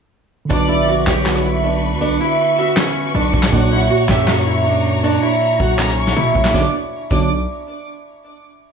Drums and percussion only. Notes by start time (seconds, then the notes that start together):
0.51 kick, closed hi-hat
0.69 closed hi-hat
0.88 closed hi-hat
1.07 kick, snare, clap, closed hi-hat
1.26 snare, clap, closed hi-hat
1.35 cross-stick
1.45 closed hi-hat
1.64 closed hi-hat
1.82 closed hi-hat
2.02 closed hi-hat
2.20 closed hi-hat
2.39 closed hi-hat
2.58 closed hi-hat
2.77 cross-stick, snare, clap, closed hi-hat
2.86 cross-stick
2.95 closed hi-hat
3.15 closed hi-hat
3.33 kick, closed hi-hat
3.43 snare, clap
3.52 kick, closed hi-hat
3.71 closed hi-hat
3.90 closed hi-hat
4.09 kick, snare, clap, closed hi-hat
4.28 snare, clap, closed hi-hat
4.37 cross-stick
4.46 closed hi-hat
4.66 closed hi-hat
4.84 closed hi-hat
5.03 closed hi-hat
5.22 closed hi-hat
5.41 closed hi-hat
5.60 kick, closed hi-hat
5.79 snare, clap, closed hi-hat
5.88 cross-stick
5.97 closed hi-hat
6.07 snare
6.17 closed hi-hat
6.35 kick, closed hi-hat, open hi-hat
6.45 snare, clap, closed hi-hat
6.54 kick, snare
7.11 kick, crash